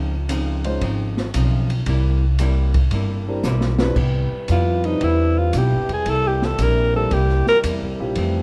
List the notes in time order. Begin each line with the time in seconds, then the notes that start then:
Already playing: C#2 C#3 F3 C4 D#4
0.29 C#3 F3 C4 D#4, hi-hat pedal, ride
0.64 G#3 C#4 D#4 F4 C5, ride
0.81 G#1 C#3 F3 C4 D#4, kick, ride
1.17 snare
1.34 B1 C#3 F3 C4 D#4, hi-hat pedal, ride
1.70 ride
1.86 C2 C3 G3 A#3 E4, kick, ride
2.39 C3 G3 A#3 E4, hi-hat pedal, ride
2.74 kick, ride
2.91 G1 C3 G3 A#3 E4, kick, ride
3.28 G3 C4 D4 E4 A#4
3.43 B1 C3 G3 A#3 E4, snare, hi-hat pedal
3.61 snare
3.79 G3 C4 D4 E4 B4, snare
3.96 C2 C3 G3 B3 E4 B4, kick, crash
4.32 muted upright bass stroke
4.48 F2 C3 G3 B3 E4 F4, kick, hi-hat pedal, ride
4.84 G3 C4 D4 D#4 E4 B4, ride
5.01 E2 C3 G3 B3 E4, kick, ride
5.38 F4
5.53 B1 C3 G3 B3 E4, kick, hi-hat pedal, ride
5.58 G4
5.71 G1
5.89 E1, ride
5.93 G#4
6.05 C2 C3 G3 A#3 E4, kick, ride
6.10 A4
6.28 G4
6.42 A4, snare
6.58 A#1 C3 G3 A#3 E4, kick, hi-hat pedal, ride
6.62 A#4
6.94 G3 C4 D4 E4 A4 A#4
7.10 C2 C3 G3 A#3 E4 G4, kick, ride
7.29 snare
7.47 A#4, snare
7.63 E2 C3 G3 A#3 E4, kick, hi-hat pedal, ride
7.81 C2
7.99 A#1 G3 C4 E4 F4 G4
8.15 F2 E3 F3 A3 C4, kick, ride